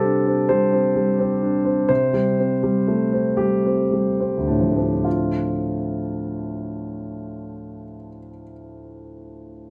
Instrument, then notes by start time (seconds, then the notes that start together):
grand piano
Already playing: C3 G3 C4 G4 A4
0.03 D4
0.26 C4
0.49 G3 C5
0.73 C4
0.95 G3
1.19 C4
1.42 D4
1.65 C4
1.89 C3 C5
2.13 G3
2.39 C4
2.63 G3
2.88 A3
3.12 C4
3.37 G3 G4
3.65 C4
3.92 G3
4.20 C4
4.38 D2
4.47 A2 D4
4.60 F3
4.71 A3
4.77 C4
4.82 C4
4.94 D4
5.04 F4